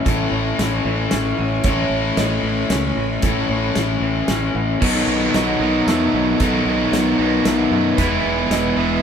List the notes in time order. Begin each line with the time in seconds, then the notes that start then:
Already playing: E3 C#4 C#5 G#5 A5
0.05 A1 A2 E3 A3 C#4 E4 A4, kick, closed hi-hat
0.32 A1 C#5
0.59 A1, snare, closed hi-hat
0.85 A1 E3 C#5
1.11 A1 C#4, snare, closed hi-hat
1.38 A1 E3 F#5
1.63 A1 A2 E3 A3 C#4 E4 A4 C#5 B5, kick, closed hi-hat
1.90 A1
2.17 A1 D#5, snare, closed hi-hat
2.43 A1 E3
2.70 C#2 C#4 E5, snare, closed hi-hat
2.97 A1 E3
3.22 A1 A2 E3 A3 C#4 E4 A4, kick, closed hi-hat
3.49 A1 C#5
3.75 A1, snare, closed hi-hat
4.00 A1 E3 C#5
4.28 A1 C#4, snare, closed hi-hat
4.55 A1 E3 F#5
4.80 B1 B2 D#3 F#3 B3 D#4 A4 B4 F#5 A5, kick, crash
5.07 B1
5.34 B1 F#3 D#5, snare, closed hi-hat
5.60 B1 B2 D#3 F#3 B3 D#4
5.87 E2 A3 E6, snare, closed hi-hat
6.13 B1 B2
6.39 B1 B2 D#3 F#3 B3 D#4 A4, kick, closed hi-hat
6.65 B1 B4
6.92 B1 F#3, snare, closed hi-hat
7.18 B1 B2 D#3 F#3 B3 D#4 B4
7.45 B1 A3, snare, closed hi-hat
7.71 F#2 B2 F#5
7.97 E1 E3 G#3 B3 E4 B4 G#5 D#6, kick, closed hi-hat
8.25 E1
8.50 E1 G#3 D#5, snare, closed hi-hat
8.76 E1 E3 G#3 B3 E4